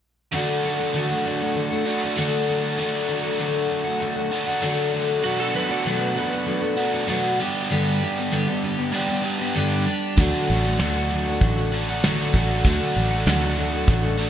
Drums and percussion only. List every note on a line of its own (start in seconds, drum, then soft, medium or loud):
10.18 kick loud
10.18 closed hi-hat medium
10.48 closed hi-hat medium
10.79 snare loud
10.79 closed hi-hat medium
11.10 closed hi-hat medium
11.41 kick loud
11.41 closed hi-hat medium
11.72 closed hi-hat medium
12.03 snare loud
12.03 closed hi-hat medium
12.34 kick medium
12.34 closed hi-hat medium
12.64 kick loud
12.64 closed hi-hat medium
12.95 closed hi-hat medium
13.26 snare loud
13.26 closed hi-hat medium
13.57 closed hi-hat medium
13.88 kick loud
13.88 closed hi-hat medium
14.18 closed hi-hat medium